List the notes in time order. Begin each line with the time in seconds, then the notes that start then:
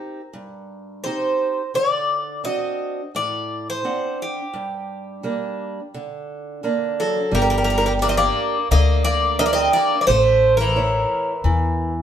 Already playing: C4 D#4 G4 A#4
0.33 G2
1.04 C4 D#4 G4 C5
1.74 D3 D5
2.44 C4 D4 F#4 D#5
3.15 A2 D5
3.70 C5
3.84 C4 D4 F#5
4.22 G4
4.54 G2
5.23 G3 A#3 D4
5.94 D3
6.63 D3 A#3 D4
7.00 F#3 A4
7.31 G1 G3 A#4
7.42 G3 A#4
7.50 G3 A#4
7.58 G3 A#4
7.64 G3 A#4
7.70 G3 A#4
7.78 G3 A#4
7.86 G3 A#4
8.02 A#3 D4 G4 A#4 D5
8.08 C4 D#5
8.17 A#3 D5
8.71 D2 D3 A#3 D#5
9.04 A#3 D5
9.39 A#3 D4 G4 A#4 D#5
9.46 A#3 D5
9.53 C4 D#5
9.73 A#3 D5
10.01 A#3 D5
10.07 A1 A3 C5
10.57 E3 A#4
10.76 E4 C#5
11.44 E2 E3